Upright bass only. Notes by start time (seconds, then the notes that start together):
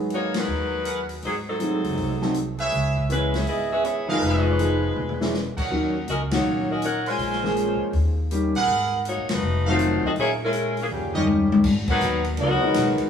Already playing: G#1
0.47 D#2
1.23 G#1
1.85 F#1
1.97 C2
2.72 C#2
3.46 G#1
4.21 F1
4.96 E1
5.57 muted upright bass stroke
5.70 D#2
6.07 C#2
6.44 A#1
7.18 A#1
7.80 muted upright bass stroke
7.93 D#2
8.55 A#1
8.67 G#1
9.17 A#1
9.30 F#1
9.42 F1
10.03 muted upright bass stroke
10.16 A#1
10.91 D#2
11.51 G1
11.64 G#1
12.01 D#2
12.38 C#2
12.75 B1
12.98 muted upright bass stroke